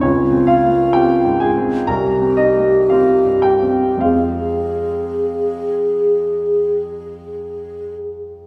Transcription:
<<
  \new Staff \with { instrumentName = "Alto flute" } { \time 4/4 \key f \minor \tempo 4 = 54 f'4. r8 g'2 | aes'2.~ aes'8 r8 | }
  \new Staff \with { instrumentName = "Grand piano" } { \time 4/4 \key f \minor <des' des''>8 <f' f''>8 <g' g''>8 <aes' aes''>8 <bes' bes''>8 <ees' ees''>8 <f' f''>8 <g' g''>8 | <f' f''>2. r4 | }
  \new Staff \with { instrumentName = "Grand piano" } { \time 4/4 \key f \minor \tuplet 3/2 { des,8 c'8 bes8 c'8 aes,8 c'8 c,8 c'8 bes8 c'8 g,8 c'8 } | <f, aes c' g'>1 | }
>>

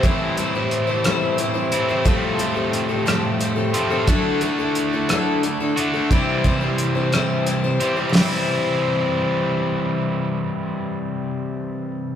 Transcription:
<<
  \new Staff \with { instrumentName = "Twelve-string acoustic guitar" } { \time 6/8 \key c \major \tempo 4. = 59 <a, e g c' e' c''>8 <g c' e' c''>16 <g c' e' c''>8 <g c' e' c''>16 <a, e g c' e' c''>8 <g c' e' c''>16 <g c' e' c''>8 <g c' e' c''>16 | <a, f g c' g' a'>8 <g c' g' a'>16 <g c' g' a'>8 <g c' g' a'>16 <a, f g c' g' a'>8 <g c' g' a'>16 <g c' g' a'>8 <g c' g' a'>16 | <d fis a d' e' a'>8 <a d' e' a'>16 <a d' e' a'>8 <a d' e' a'>16 <d fis a d' e' a'>8 <a d' e' a'>16 <a d' e' a'>8 <a d' e' a'>16 | <c e g c' e' c''>8 <g c' e' c''>16 <g c' e' c''>8 <g c' e' c''>16 <c e g c' e' c''>8 <g c' e' c''>16 <g c' e' c''>8 <g c' e' c''>16 |
<c e g c' e' c''>2.~ | <c e g c' e' c''>2. | }
  \new Staff \with { instrumentName = "Overdriven electric guitar" } { \time 6/8 \key c \major <a, e a c' e'>2~ <a, e a c' e'>8 <a, e a c' e'>8 | <a, f a c' f'>2~ <a, f a c' f'>8 <a, f a c' f'>8 | <d a d' fis'>2~ <d a d' fis'>8 <d a d' fis'>8 | <c e g c' g'>2~ <c e g c' g'>8 <c e g c' g'>8 |
<c e g c' e'>2.~ | <c e g c' e'>2. | }
  \new DrumStaff \with { instrumentName = "Drums" } \drummode { \time 6/8 <hh bd>8 hh8 hh8 <hh ss>8 hh8 hh8 | <hh bd>8 hh8 hh8 <hh ss>8 hh8 hh8 | <hh bd>8 hh8 hh8 <hh ss>8 hh8 hh8 | <hh bd>8 <hh bd>8 hh8 <hh ss>8 hh8 hh8 |
<hho sn>4. r4. | r4. r4. | }
>>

